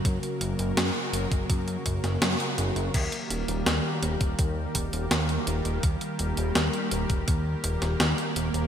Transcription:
<<
  \new Staff \with { instrumentName = "Analog synth pad" } { \time 4/4 \key ees \major \tempo 4 = 83 <des ges bes ges' bes'>1 | <ees g bes g' bes'>1~ | <ees g bes g' bes'>1 | }
  \new Staff \with { instrumentName = "Analog synth bass" } { \clef bass \time 4/4 \key ees \major ges,16 r16 ges,,16 ges,,16 ges,16 r16 ges,,16 ges,,16 ges,8 ges,,16 ges,,16 ges,16 r16 ges,,16 ges,,16 | ees,16 r16 ees,,16 ees,,16 ees,16 r16 ees,,16 ees,,16 ees,8 ees,,16 ees,,16 ees,8 ees,,16 ees,,16 | ees,16 r16 ees,,16 ees,,16 ees,16 r16 ees,,16 ees,,16 ees,8 ees,,16 ees,,16 ees,16 r16 ees,,16 ees,,16 | }
  \new DrumStaff \with { instrumentName = "Drums" } \drummode { \time 4/4 <hh bd>16 hh16 hh16 hh16 <hh sn>8 hh16 <hh bd>16 <hh bd>16 hh16 <hh bd>16 <hh sn>16 <hh sn>16 hh16 hh16 hh16 | <cymc hh bd>16 hh16 hh16 hh16 <hh sn>8 hh16 <hh bd>16 <hh bd>8 <hh bd>16 hh16 <hh sn>16 hh16 hh16 hh16 | <hh bd>16 hh16 hh16 hh16 <hh sn>16 hh16 hh16 <hh bd>16 <hh bd>8 hh16 <hh sn>16 <hh sn>16 hh16 hh16 hh16 | }
>>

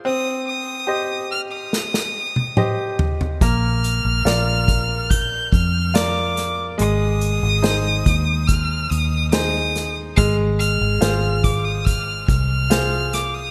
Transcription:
<<
  \new Staff \with { instrumentName = "Violin" } { \time 4/4 \key c \minor \tempo 4 = 71 ees'''8 ees'''4 f'''16 ees'''4.~ ees'''16 r8 | f'''2 g'''8 f'''8 d'''8. r16 | ees'''2 f'''8 ees'''8 ees'''8. r16 | f'''8 f'''4 d'''16 ees'''16 f'''8 f'''4 d'''16 ees'''16 | }
  \new Staff \with { instrumentName = "Grand piano" } { \time 4/4 \key c \minor c'4 <g' c'' ees''>4 r4 <g' c'' ees''>4 | bes4 <f' bes' d''>4 r4 <f' bes' d''>4 | aes4 <ees' aes' c''>4 r4 <ees' aes' c''>4 | aes4 <f' aes' c''>4 r4 <f' aes' c''>4 | }
  \new Staff \with { instrumentName = "Fingered electric bass" } { \clef bass \time 4/4 \key c \minor r1 | bes,,8. bes,,16 bes,,4. f,4. | aes,,8. aes,,8. ees,4 ees,4. | aes,,8. aes,,16 aes,,4. c,4. | }
  \new DrumStaff \with { instrumentName = "Drums" } \drummode { \time 4/4 r4 r4 sn16 sn8 tommh16 toml8 tomfh16 tomfh16 | <hh bd>8 hh8 <hh sn>8 <hh bd>8 <hh bd>8 <hh bd>8 <hh sn>8 <hh sn>8 | hh8 hh8 <hh sn>8 <hh bd>8 <hh bd>8 hh8 <hh sn>8 <hh sn>8 | <hh bd>8 hh8 <hh sn>8 <hh bd>8 <hh bd>8 <hh bd>8 <hh sn>8 <hh sn>8 | }
>>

